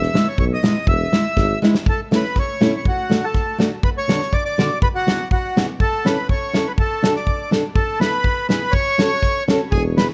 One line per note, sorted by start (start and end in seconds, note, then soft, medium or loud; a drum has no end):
0.00 0.28 E5 medium
0.00 snare soft
0.14 0.25 G#3 medium
0.14 0.25 B3 soft
0.14 0.26 E4 medium
0.14 snare medium
0.28 0.38 C#5 medium
0.38 0.55 B1 medium
0.38 0.45 C#5 medium
0.38 kick medium
0.54 0.86 D#5 medium
0.63 0.74 G#3 medium
0.63 0.74 B3 medium
0.63 0.75 E4 medium
0.63 snare medium
0.87 1.04 E1 medium
0.87 1.59 E5 medium
0.87 kick medium
1.12 1.23 G#3 medium
1.12 1.24 B3 medium
1.12 1.24 E4 medium
1.12 snare medium
1.37 1.54 G#1 medium
1.37 kick medium
1.37 snare soft
1.62 1.73 G#3 medium
1.62 1.74 B3 medium
1.62 1.74 E4 medium
1.62 snare medium
1.75 snare medium
1.86 2.00 A4 medium
1.86 kick medium
2.11 2.22 A3 medium
2.11 2.23 C#4 soft
2.11 2.23 E4 medium
2.11 snare medium
2.16 2.38 B4 medium
2.24 snare soft
2.36 2.75 C#5 medium
2.36 kick medium
2.36 snare soft
2.61 2.72 A3 medium
2.61 2.72 C#4 medium
2.61 2.72 E4 medium
2.61 snare medium
2.77 2.86 C#5 medium
2.85 3.25 F#4 medium
2.85 kick medium
3.09 3.21 A3 medium
3.09 3.21 D4 soft
3.09 3.21 F#4 medium
3.09 snare medium
3.24 3.58 A4 medium
3.34 kick medium
3.34 snare soft
3.58 3.69 A3 medium
3.58 3.70 D4 medium
3.58 3.70 F#4 medium
3.58 snare medium
3.83 3.90 B4 medium
3.83 kick medium
3.98 4.34 C#5 medium
4.08 4.19 D3 medium
4.08 4.19 B3 medium
4.08 4.19 D4 medium
4.08 4.19 F#4 medium
4.08 snare medium
4.21 snare soft
4.33 4.44 D5 medium
4.33 kick medium
4.45 4.79 D5 medium
4.58 4.68 D3 medium
4.58 4.69 B3 soft
4.58 4.69 D4 medium
4.58 4.69 F#4 medium
4.58 snare medium
4.82 4.88 B4 medium
4.82 kick medium
4.95 5.28 F#4 medium
5.07 5.17 B3 medium
5.07 5.18 E4 soft
5.07 5.18 G#4 medium
5.07 snare medium
5.31 5.66 F#4 medium
5.31 kick medium
5.56 5.67 B3 medium
5.56 5.67 E4 soft
5.56 5.68 G#4 medium
5.56 snare medium
5.80 6.07 A4 medium
5.80 kick medium
6.05 6.16 C#4 medium
6.05 6.16 E4 soft
6.05 6.17 A4 medium
6.05 6.28 B4 medium
6.05 snare medium
6.29 6.68 C#5 medium
6.29 kick medium
6.53 6.65 C#4 medium
6.53 6.65 E4 soft
6.53 6.66 A4 medium
6.53 snare medium
6.67 6.72 B4 medium
6.78 7.14 A4 medium
6.78 kick medium
7.02 7.14 D4 medium
7.02 7.14 F#4 soft
7.02 7.15 A4 medium
7.02 snare medium
7.16 7.51 D5 medium
7.16 snare soft
7.27 kick soft
7.51 7.62 D4 medium
7.51 7.63 F#4 soft
7.51 7.63 A4 medium
7.51 snare medium
7.75 7.99 A4 medium
7.75 kick medium
8.00 8.11 B3 medium
8.00 8.12 E4 soft
8.00 8.12 A4 medium
8.00 8.47 B4 loud
8.00 snare medium
8.24 kick medium
8.49 8.60 B3 medium
8.49 8.60 E4 medium
8.49 8.61 G#4 medium
8.49 8.74 B4 medium
8.49 snare medium
8.71 9.44 C#5 loud
8.71 kick medium
8.98 9.09 C#4 soft
8.98 9.10 F#4 medium
8.98 9.10 A4 medium
8.98 snare medium
9.22 kick medium
9.22 snare soft
9.48 9.59 C#4 medium
9.48 9.59 F#4 medium
9.48 9.60 A4 medium
9.48 snare medium
9.71 10.04 E1 medium
9.71 9.83 G#4 medium
9.71 kick medium
9.97 10.08 B3 soft
9.97 10.09 E4 soft
9.97 10.09 G#4 medium
9.97 10.08 B4 medium
9.97 snare medium
10.10 snare soft